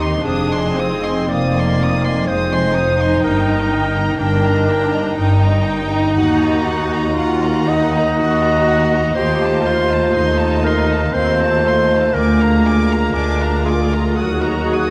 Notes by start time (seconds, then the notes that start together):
Already playing: D#2 D#3 C4 D#4 G4
0.00 D#5 C6
0.23 F1 F2 D4 D#4 G#4 C5 F5 D#6
0.50 D#5 G#5 C6
0.76 C4 C5 F5 D#6
1.04 D#5 G#5 C6
1.28 F1 F2 A#3 C5 D5 F5
1.32 D#6
1.56 D#5 G#5 C6
1.80 C5 F5 D#6
2.04 D#5 G#5 C6
2.26 F1 F2 G#3 C5 D#6
2.31 C5 F5
2.52 D#5 G#5 C6
2.74 D#4 C5 F5 D#6
3.00 D#5 G#5 C6
3.21 G1 G2 A#4 G5 A#5
3.25 A#3
3.47 D#5 G5 A#5
3.71 G5 A#5
3.94 D#5 G5 A#5
4.18 G1 G2 D4 A#4 G5 A#5
4.43 D#5 G5 A#5
4.65 G5 A#5
4.91 D#5 G5 A#5
5.15 G1 G2 D#4 G5 A#5
5.41 D#5 G5 A#5
5.65 G5 A#5
5.90 D#5 G5 A#5
6.14 D#2 A#3 D#4 F#4 F#5 A#5
6.38 D#5 F#5 A#5
6.63 F#5 A#5
6.89 D#5 F#5 A#5
7.14 D#2 F4 F#5 A#5
7.42 D#5 F#5 A#5
7.68 D#4 D#5 F#5 A#5
7.93 D#5 F#5 A#5
8.18 D#2 F#4 F#5 A#5
8.41 D#5 F#5 A#5
8.65 F#5 A#5
8.88 D#5 F#5
8.92 A#5
9.12 D#2 A3 F4 G4 C5 D#5 F5 C6
9.38 D#5 F5 A5
9.63 F4 D#5 F5 C6
9.89 D#5 F5 A5
10.14 D#2 D#4 D#5 F5 C6
10.38 D#5 F5 A5
10.64 A#4 D#5 F5 C6
10.89 D#5 F5 A5
11.13 D#2 A3 C4 F4 C5 D#5 F5 C6
11.41 D#5 F5 A5
11.64 A3 D#5 F5 C6
11.90 D#5 F5 A5
12.12 D2 G#3 A#3 F4 A#4 D5 G#5
12.16 D6
12.40 F5 A#5
12.65 D5 G#5 D6
12.89 F5 A#5
13.14 D2 D4 D5 G#5 D6
13.40 F5 A#5
13.65 F4 G#4 D5 G#5 D6
13.74 A#4
13.82 G#4
13.89 A#4 A#5
13.93 F5
13.97 G#4
14.06 A#4
14.15 D#2 F#4 G#4 A#4 F#5 D#6
14.20 F#3 D#4 A#4
14.32 G#4
14.40 A#4
14.44 G#4 D#5 A#5
14.56 A#4
14.64 G#4
14.71 A#4 F#5 D#6